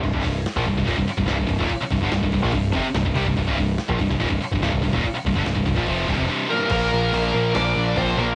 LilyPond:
<<
  \new Staff \with { instrumentName = "Lead electric guitar" } { \time 4/4 \key c \minor \tempo 4 = 144 r1 | r1 | r1 | r2. r8 bes'8 |
bes'2 d''4 c''8 bes'8 | }
  \new Staff \with { instrumentName = "Lead electric guitar" } { \time 4/4 \key c \minor r1 | r1 | r1 | r2. r8 bes8 |
bes2 d'4 c'8 bes8 | }
  \new Staff \with { instrumentName = "Distorted electric guitar" } { \clef bass \time 4/4 \key c \minor <c, g,>16 <c, g,>16 <c, g,>8 r16 <bes, f>16 <c, g,>16 <c, g,>16 <ees, bes,>16 <c, g,>16 r16 <c, g,>16 <c, g,>16 <c, g,>16 <c, g,>16 <ees, bes,>16 | r8 <c, g,>16 <g, d>16 <c, g,>16 <c, g,>16 <c, g,>16 <bes, f>16 <c, g,>8 <f, c>16 r16 <c, g,>16 <c, g,>16 <c g>16 <c, g,>16 | <c, g,>16 <c, g,>16 <c, g,>8 r16 <bes, f>16 <c, g,>16 <c, g,>16 <ees, bes,>16 <c, g,>16 r16 <c, g,>16 <c, g,>16 <c, g,>16 <c, g,>16 <ees, bes,>16 | r8 <c, g,>16 <g, d>16 <c, g,>16 <c, g,>16 <c, g,>16 <bes, f>16 <f, c f>8 <c, g,>16 <f, c>16 <c, g, c>8 <bes, f>16 <c, g,>16 |
<bes, f bes>4 <bes, f bes>8 <bes, f bes>8 <bes, f bes>4 <bes, f bes>8 <bes, f bes>8 | }
  \new Staff \with { instrumentName = "Distorted electric guitar" } { \clef bass \time 4/4 \key c \minor <c, g,>16 <c, g,>16 <c, g,>8 r16 <bes, f>16 <c, g,>16 <c, g,>16 <ees, bes,>16 <c, g,>16 r16 <c, g,>16 <c, g,>16 <c, g,>16 <c, g,>16 <ees, bes,>16 | r8 <c, g,>16 <g, d>16 <c, g,>16 <c, g,>16 <c, g,>16 <bes, f>16 <c, g,>8 <f, c>16 r16 <c, g,>16 <c, g,>16 <c g>16 <c, g,>16 | <c, g,>16 <c, g,>16 <c, g,>8 r16 <bes, f>16 <c, g,>16 <c, g,>16 <ees, bes,>16 <c, g,>16 r16 <c, g,>16 <c, g,>16 <c, g,>16 <c, g,>16 <ees, bes,>16 | r8 <c, g,>16 <g, d>16 <c, g,>16 <c, g,>16 <c, g,>16 <bes, f>16 <f, c f>8 <c, g,>16 <f, c>16 <c, g, c>8 <bes, f>16 <c, g,>16 |
<bes, f bes>4 <bes, f bes>8 <bes, f bes>8 <bes, f bes>4 <bes, f bes>8 <bes, f bes>8 | }
  \new Staff \with { instrumentName = "Picked electric bass" } { \clef bass \time 4/4 \key c \minor c,,16 c,,16 c,,8 r16 bes,,16 c,,16 c,,16 ees,,16 c,,16 r16 c,,16 c,,16 c,,16 c,,16 ees,,16 | r8 c,,16 g,,16 c,,16 c,,16 c,,16 bes,,16 c,,8 f,,16 r16 c,,16 c,,16 c,16 c,,16 | c,,16 c,,16 c,,8 r16 bes,,16 c,,16 c,,16 ees,,16 c,,16 r16 c,,16 c,,16 c,,16 c,,16 ees,,16 | r8 c,,16 g,,16 c,,16 c,,16 c,,16 bes,,16 f,,8 c,,16 f,,16 r4 |
bes,,8 bes,,8 bes,,8 bes,,8 bes,,8 bes,,8 bes,,8 bes,,8 | }
  \new DrumStaff \with { instrumentName = "Drums" } \drummode { \time 4/4 <cymc hho bd>16 bd16 <hho bd>8 <hho sn>16 bd16 <hho bd>16 <bd sn>16 <hho bd>16 bd16 hho16 bd16 <hho sn>16 bd16 <hho bd>16 bd16 | <hho bd>8 <hho bd>16 bd16 <hho sn>16 bd16 <hho bd>16 <bd sn>16 <hho bd>8 <hho bd>8 <hho sn>16 bd16 <hho bd>16 bd16 | <hho bd>16 bd16 <hho bd>8 <hho sn>16 bd16 <hho bd>16 <bd sn>16 <hho bd>16 bd16 hho16 bd16 <hho sn>16 bd16 <hho bd>16 bd16 | <hho bd>8 <hho bd>16 bd16 <hho sn>16 bd16 <hho bd>16 <bd sn>16 <hho bd>8 <hho bd>16 bd16 r4 |
<cymc hho bd>4 hho4 <hho sn>4 <hho bd>4 | }
>>